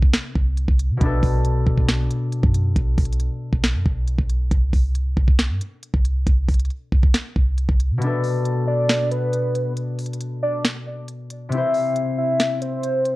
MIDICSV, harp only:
0, 0, Header, 1, 2, 480
1, 0, Start_track
1, 0, Tempo, 437956
1, 1107, Time_signature, 4, 2, 24, 8
1, 14421, End_track
2, 0, Start_track
2, 0, Title_t, "Harp"
2, 0, Program_c, 0, 46
2, 0, Note_on_c, 0, 48, 68
2, 0, Note_on_c, 0, 60, 60
2, 0, Note_on_c, 0, 64, 65
2, 0, Note_on_c, 0, 71, 75
2, 1060, Note_off_c, 0, 60, 0
2, 1064, Note_on_c, 0, 47, 69
2, 1075, Note_off_c, 0, 64, 0
2, 1090, Note_off_c, 0, 71, 0
2, 1094, Note_on_c, 0, 59, 60
2, 1124, Note_on_c, 0, 62, 65
2, 1154, Note_on_c, 0, 69, 81
2, 1162, Note_off_c, 0, 48, 0
2, 4896, Note_off_c, 0, 59, 0
2, 4911, Note_off_c, 0, 62, 0
2, 4926, Note_off_c, 0, 69, 0
2, 5002, Note_off_c, 0, 47, 0
2, 8743, Note_on_c, 0, 47, 71
2, 8773, Note_on_c, 0, 59, 62
2, 8803, Note_on_c, 0, 62, 65
2, 8833, Note_on_c, 0, 69, 80
2, 12576, Note_off_c, 0, 59, 0
2, 12591, Note_off_c, 0, 62, 0
2, 12591, Note_on_c, 0, 48, 70
2, 12606, Note_off_c, 0, 69, 0
2, 12621, Note_on_c, 0, 60, 61
2, 12651, Note_on_c, 0, 64, 65
2, 12681, Note_on_c, 0, 72, 79
2, 12682, Note_off_c, 0, 47, 0
2, 14421, Note_off_c, 0, 48, 0
2, 14421, Note_off_c, 0, 60, 0
2, 14421, Note_off_c, 0, 64, 0
2, 14421, Note_off_c, 0, 72, 0
2, 14421, End_track
0, 0, End_of_file